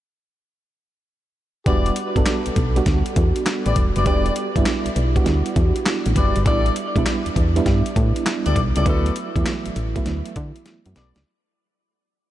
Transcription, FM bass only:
1.66 1.91 E1 loud
2.16 2.24 G1 medium
2.47 2.51 B1 soft
2.57 2.81 B1 medium
2.86 3.03 D2 medium
3.17 3.33 E2 loud
3.66 3.75 A1 medium
3.76 3.93 E1 medium
3.96 4.08 F#1 medium
4.06 4.31 E1 loud
4.56 4.64 G1 medium
4.86 4.90 B1 medium
4.96 5.21 B1 medium
5.26 5.43 D2 loud
5.56 5.73 E2 loud
6.06 6.15 A1 medium
6.16 6.33 F#1 medium
6.36 6.48 G1 medium
6.46 6.71 A1 loud
6.96 7.04 B1 medium
7.26 7.30 E2 soft
7.36 7.61 E2 medium
7.66 7.83 G2 loud
7.96 8.13 A2 loud
8.47 8.55 D2 medium
8.56 8.73 B1 medium
8.77 8.85 C#2 medium
8.86 9.11 D2 loud
9.36 9.44 E2 medium
9.67 9.70 A1 soft
9.76 10.01 A1 medium
10.06 10.23 D2 medium
10.36 10.53 D3 loud
10.86 10.95 F#2 medium
10.97 11.13 B1 medium
11.16 11.25 C#2 loud

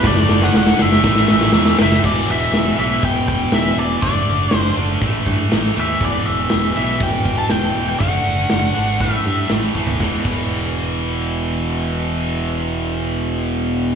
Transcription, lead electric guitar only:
0.07 0.44 D5 loud
0.44 0.54 F#5 loud
0.57 0.81 F#5 loud
0.82 1.76 E5 loud
1.82 2.05 E5 medium
2.06 2.28 D5 medium
2.31 2.78 E5 medium
2.79 3.02 E5 medium
3.05 3.27 G5 loud
3.28 3.54 G5 medium
3.54 3.79 E5 medium
3.80 4.02 D5 medium
4.03 4.55 D5 medium
4.55 4.74 C5 medium
5.80 6.04 E5 medium
6.05 6.26 D5 medium
6.26 6.75 E5 medium
6.77 7.00 E5 medium
7.03 7.37 G5 medium
7.39 7.51 A5 medium
7.51 7.88 G5 medium
7.89 7.99 G5 medium
8.00 9.04 F#5 medium
9.01 9.48 E5 medium

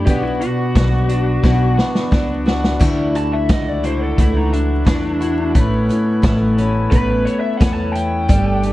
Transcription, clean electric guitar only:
0.00 1.08 D4 medium
0.06 1.78 B2 medium
0.76 1.76 F#4 medium
1.09 2.11 D4 medium
1.43 2.81 B3 medium
1.77 2.45 F#4 medium
2.12 2.81 D4 medium
2.46 2.81 F#4 medium
2.80 4.52 D3 medium
3.50 4.52 E4 medium
3.84 4.86 D4 medium
4.19 6.91 A3 medium
4.53 5.20 E4 medium
4.87 5.56 D4 medium
5.21 5.56 E4 medium
5.56 7.27 A2 medium
6.25 7.25 E4 medium
6.59 7.59 C#4 medium
6.91 8.29 B3 medium
7.26 7.94 E4 medium
7.60 8.29 C#4 medium
7.96 8.30 E4 medium
8.30 8.73 G3 medium

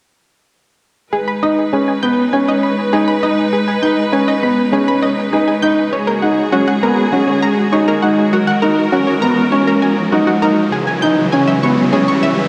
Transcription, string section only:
1.11 5.88 G#3 medium
1.11 5.88 D#4 medium
1.11 5.88 B4 medium
5.91 10.68 G#3 medium
5.91 10.68 F#4 medium
5.91 8.30 G#4 medium
8.33 10.70 A#4 medium
10.72 12.48 C#3 medium
10.72 12.48 E3 medium
10.72 12.48 G#3 medium

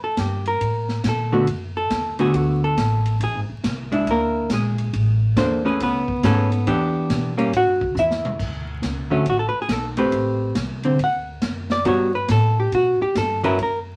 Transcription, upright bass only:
0.00 0.16 E2 medium
0.17 0.59 G2 medium
0.60 1.02 A2 medium
1.04 1.46 A#2 medium
1.47 1.89 F#2 medium
1.90 2.32 E2 medium
2.33 2.76 D2 medium
2.77 3.19 A1 medium
3.20 3.34 A#1 medium
3.34 3.49 G#1 medium
3.49 3.63 F1 medium
3.63 4.05 C2 medium
4.06 4.49 D2 medium
4.50 4.92 A#1 medium
4.93 5.35 A1 medium
5.36 5.78 E2 medium
5.80 6.22 C#2 medium
6.23 6.65 G#2 medium
6.66 7.08 E2 medium
7.09 7.52 B2 medium
7.53 7.66 A2 medium
7.66 7.80 G2 medium
7.80 7.94 E2 medium
7.95 8.38 E2 loud
8.39 8.81 D2 medium
8.82 9.24 C#2 medium
9.25 9.52 A1 medium
9.53 muted upright bass stroke soft
9.68 10.11 B1 medium
10.12 10.54 A1 medium
10.55 10.98 C2 medium
10.98 11.41 D2 medium
11.42 11.84 F#2 medium
11.85 12.27 G2 medium
12.29 12.71 A2 medium
12.72 12.98 B2 medium
13.00 muted upright bass stroke soft
13.15 13.57 G2 medium
13.58 13.96 F#2 medium

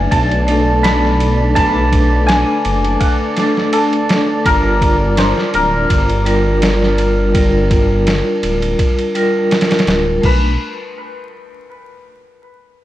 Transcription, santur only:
0.00 0.23 E5 loud
0.00 0.44 F#5 loud
0.00 0.17 G#5 loud
0.11 1.55 A5 loud
0.83 2.63 B5 loud
1.55 2.33 A5 loud
2.27 3.79 G#5 loud
3.00 5.15 F#5 loud
3.73 4.52 A4 medium
4.46 5.54 A#4 loud
5.18 7.82 C5 medium
5.55 9.48 A#4 medium
10.25 10.58 B4 medium

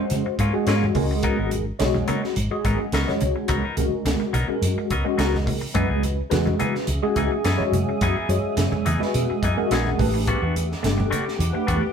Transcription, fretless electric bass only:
0.11 0.22 C#3 medium
0.26 muted fretless electric bass stroke soft
0.39 0.50 G#2 medium
0.67 0.88 G#2 medium
0.95 1.28 C#2 medium
1.39 1.70 G#1 medium
1.80 2.01 B1 medium
2.37 2.48 G#1 medium
2.51 muted fretless electric bass stroke soft
2.65 2.76 G#1 medium
2.93 3.04 C#2 medium
3.21 3.33 C#2 medium
3.49 3.60 C#2 loud
3.77 3.88 C#2 medium
3.92 muted fretless electric bass stroke soft
4.05 4.17 C#2 medium
4.33 4.45 B1 medium
4.62 4.73 F#2 medium
4.76 muted fretless electric bass stroke soft
4.90 5.02 C#2 medium
5.18 5.51 C#2 medium
5.61 muted fretless electric bass stroke soft
5.75 5.86 F#2 loud
5.90 6.21 C#2 medium
6.31 6.53 E2 medium
6.87 6.99 C#2 medium
7.16 7.28 C#2 medium
7.45 7.56 F#2 medium
7.72 7.83 F#2 medium
8.01 8.13 F#2 medium
8.29 8.40 F#2 medium
8.43 muted fretless electric bass stroke soft
8.57 8.68 F#2 medium
8.73 muted fretless electric bass stroke soft
8.86 8.97 E2 medium
9.02 muted fretless electric bass stroke soft
9.15 9.26 B2 medium
9.31 muted fretless electric bass stroke soft
9.43 9.54 F#2 medium
9.71 9.92 A#1 medium
9.99 10.32 A1 medium
10.42 10.74 E2 medium
10.84 11.05 G1 medium
11.39 11.51 E2 medium
11.54 muted fretless electric bass stroke soft
11.68 11.80 E2 medium

